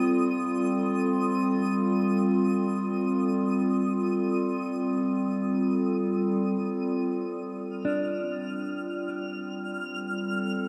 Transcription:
Already playing: G3 C4 F4 A4 D#6
7.42 G3
7.46 F6
7.65 C4
7.85 D4
9.88 A4

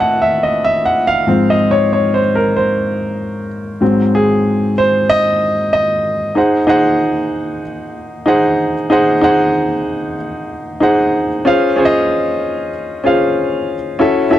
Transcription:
Already playing: A2 F#3 C#4 B4 C#5 D#5 E5 A5
0.00 F#5
0.22 E5
0.43 D#5
0.64 E5
0.85 F#5
1.07 F5
1.27 G#2 F3 C4
1.50 D#5
1.71 C#5
1.93 C#5
2.14 C5
2.35 A#4
2.56 C5
3.81 G#2 F#3 C4
4.15 G#4
4.78 C5
5.09 D#5
5.73 D#5
6.35 D#4 G#4 C5 F#5
6.67 D#4 G#4 C5 F#5
8.26 D#4 G#4 C5 F#5
8.90 D#4 G#4 C5 F#5
9.21 D#4 G#4 C5 F#5
10.80 D#4 G#4 C5 F#5
11.45 C#4 F4 G#4 C5 F5
11.76 C#4 F4 G#4 C5 C#5
11.85 D#5
13.04 C#4 F4 G#4 C5 F5
13.99 C#4 E4 F#4 A4 E5
14.30 C#4 E4 F#4 A4 E5

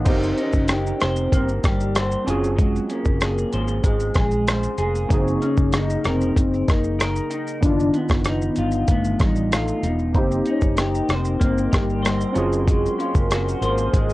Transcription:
Already playing: B3 D#4 F4
0.05 F#1 C4 D#4 G4 C5, kick, closed hi-hat, crash, shaker
0.10 A#4
0.23 shaker
0.37 C#4 D#4, closed hi-hat, shaker
0.52 F#1, kick, shaker
0.68 G4, cross-stick, closed hi-hat, shaker
0.74 D#4
0.87 shaker
0.96 C#4
1.00 F1 C5, cross-stick, closed hi-hat, shaker
1.04 C4
1.16 shaker
1.32 G1 A#3 C4, kick, closed hi-hat, shaker
1.49 shaker
1.64 G1 G3 G4, kick, cross-stick, closed hi-hat, shaker
1.80 shaker
1.95 C5, cross-stick, closed hi-hat, shaker
2.12 shaker
2.24 F#1 F#3 C4 C#4 F4, closed hi-hat, shaker
2.30 G#4
2.44 shaker
2.57 F#3 G#3, kick, closed hi-hat, shaker
2.76 shaker
2.89 A#3 C#4, closed hi-hat, shaker
3.05 F#1, kick, shaker
3.21 G#4, cross-stick, closed hi-hat, shaker
3.38 shaker
3.53 G#1 C5, closed hi-hat, shaker
3.68 shaker
3.84 G#1 G#3, kick, closed hi-hat, shaker
4.00 shaker
4.14 A#1 G#3 G#4, kick, cross-stick, closed hi-hat, shaker
4.31 shaker
4.47 G#3 C5, cross-stick, closed hi-hat, shaker
4.63 shaker
4.78 F1 A#3 G#4, closed hi-hat, shaker
4.95 shaker
5.09 F#1 C#3 F#3 A#3 D#4, kick, closed hi-hat, shaker
5.14 C4 G#4
5.27 shaker
5.42 C#4, closed hi-hat, shaker
5.57 F#1, kick, shaker
5.73 D#4, cross-stick, closed hi-hat, shaker
5.77 D#4
5.90 shaker
6.04 F1 C4 A#4, cross-stick, closed hi-hat, shaker
6.21 shaker
6.36 F#1 C4, kick, closed hi-hat, shaker
6.54 shaker
6.68 F#1 A#3 D#4, kick, cross-stick, closed hi-hat, shaker
6.84 shaker
6.99 A#4, cross-stick, closed hi-hat, shaker
7.16 shaker
7.30 D#4, closed hi-hat, shaker
7.48 shaker
7.61 F#1 D#3 B3 D4, kick, closed hi-hat, shaker
7.66 F4
7.80 shaker
7.94 B3, closed hi-hat, shaker
8.09 F#1, kick, cross-stick, shaker
8.24 D#4, cross-stick, closed hi-hat, shaker
8.42 shaker
8.56 G1 F4, closed hi-hat, shaker
8.72 shaker
8.88 G1 A3 B3, kick, closed hi-hat, shaker
9.05 shaker
9.20 A1 G3 D#4, kick, cross-stick, closed hi-hat, shaker
9.36 shaker
9.52 A3 F4, cross-stick, closed hi-hat, shaker
9.68 shaker
9.83 E1 D#4, closed hi-hat, shaker
9.88 B3
9.99 shaker
10.13 F#1 A#3 D#4 A#4 C5 D#5 G5 C6, kick, closed hi-hat, shaker
10.18 C4 G4
10.31 shaker
10.46 C#4 D#4, closed hi-hat, shaker
10.61 F#1, kick, shaker
10.77 G4, cross-stick, closed hi-hat, shaker
10.81 D#4
10.95 shaker
11.09 F1 C4 C5, cross-stick, closed hi-hat, shaker
11.25 shaker
11.40 G1 A#3 C4, kick, closed hi-hat, shaker
11.58 shaker
11.72 G1 G4, kick, cross-stick, closed hi-hat, shaker
11.76 G3
11.90 shaker
12.03 C5, cross-stick, closed hi-hat, shaker
12.21 shaker
12.32 F#1 F#3 C4 C#4 F4 A#4 C5 G#5, closed hi-hat, shaker
12.38 G#4
12.53 shaker
12.67 F#3 G#3, kick, closed hi-hat, shaker
12.86 shaker
12.98 A#3 C#4, closed hi-hat, shaker
13.15 F#1, kick, shaker
13.31 F#4, cross-stick, closed hi-hat, shaker
13.48 shaker
13.61 G#1 A#3 C5, closed hi-hat, shaker
13.78 shaker
13.92 G#1 G#3, kick, closed hi-hat, shaker
13.96 G#3
14.10 shaker

